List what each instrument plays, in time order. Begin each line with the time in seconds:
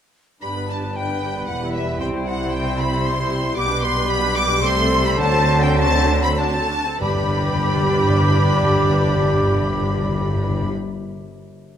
0.41 double bass section G1, cello section G2, bassoon G3, french horn section B3 D4, clarinet D4, viola section D4 G4, cor anglais B4, flute B5, violin section B5
0.56 viola section B3 B4
0.68 viola section D4 G4, flute A5, violin section A5
0.83 viola section B3 B4
0.96 viola section D4 G4, violin section G5, flute G5
1.10 viola section B3 B4
1.23 viola section D4 G4
1.36 viola section B3 B4
1.47 double bass section E1, cello section E2, french horn section G3 E4, viola section G3 G4, clarinet E4, violin section F#5, flute F#5
1.62 viola section B3 E4
1.75 viola section G3 G4, violin section E5, flute E5
1.88 viola section B3 E4
2.00 double bass section C2, cello section C3, viola section C4 G4, cor anglais C5, violin section G5, flute G5
2.14 viola section E4 C5
2.26 viola section C4 G4, violin section F#5, flute F#5
2.40 viola section E4 C5
2.52 viola section C4 G4, violin section G5, flute G5
2.66 viola section E4 C5
2.78 viola section C4 G4, flute B5, violin section B5
2.92 viola section E4 C5
3.05 viola section C4 G4, flute C6, violin section C6
3.18 viola section E4 C5
3.31 viola section C4 G4
3.44 viola section E4 C5
3.56 double bass section B1, cello section B2, bassoon G3, viola section B3 G4, clarinet G4, french horn section G4, cor anglais B4, flute D6, violin section D6
3.70 viola section D4 B4
3.82 viola section B3 G4, violin section C6, flute C6
3.96 viola section D4 B4
4.09 viola section B3 G4, violin section B5, flute B5
4.22 viola section D4 B4
4.36 viola section B3 G4, flute D6, violin section D6
4.49 viola section D4 B4
4.63 double bass section C2, cello section C3, viola section G3 G4, french horn section A3, clarinet A4, cor anglais C5, flute C6, violin section C6
4.77 viola section A3 A4
4.90 viola section G3 G4
5.05 viola section A3 A4, flute B5, violin section B5
5.18 double bass section D2, cello section D3, timpani D3, bassoon F#3, french horn section C4 F#4, viola section D4 F#4, flute A5, violin section A5
5.34 viola section C4 A4
5.47 viola section D4 F#4
5.62 viola section C4 A4, flute G5, violin section G5
5.77 viola section D4 F#4, violin section A5, flute A5
5.92 viola section C4 A4
6.07 viola section D4 F#4
6.22 viola section C4 A4, flute B5, violin section B5
6.36 viola section D4 F#4, flute A5, violin section A5
6.54 viola section C4 A4
6.69 viola section D4 F#4
6.85 viola section C4 A4
7.01 double bass section G1, cello section G2, timpani G2, bassoon G3, viola section D4 G4, french horn section D4 G4, clarinet G4, violin section B4 B5, cor anglais D5, flute B5
7.08 timpani G2
7.15 timpani G2
7.21 timpani G2
7.28 timpani G2
7.35 timpani G2
7.41 timpani G2
7.49 timpani G2
7.56 timpani G2
7.62 timpani G2
7.69 timpani G2
7.75 timpani G2
7.82 timpani G2
7.89 timpani G2
7.95 timpani G2
8.02 timpani G2
8.08 timpani G2
8.15 timpani G2
8.22 timpani G2
8.29 timpani G2
8.36 timpani G2
8.43 timpani G2
8.49 timpani G2
8.56 timpani G2
8.62 timpani G2
8.69 timpani G2
8.76 timpani G2
8.82 timpani G2
8.89 timpani G2
8.96 timpani G2
9.03 timpani G2
9.09 timpani G2
9.15 timpani G2
9.22 timpani G2
9.28 timpani G2
9.34 timpani G2
9.41 timpani G2
9.47 timpani G2
9.54 timpani G2
9.61 timpani G2
9.67 timpani G2
9.74 timpani G2
9.81 timpani G2
9.88 timpani G2
9.96 timpani G2
10.02 timpani G2
10.09 timpani G2
10.15 timpani G2
10.21 timpani G2
10.28 timpani G2
10.35 timpani G2
10.42 timpani G2
10.49 timpani G2
10.55 timpani G2
10.62 timpani G2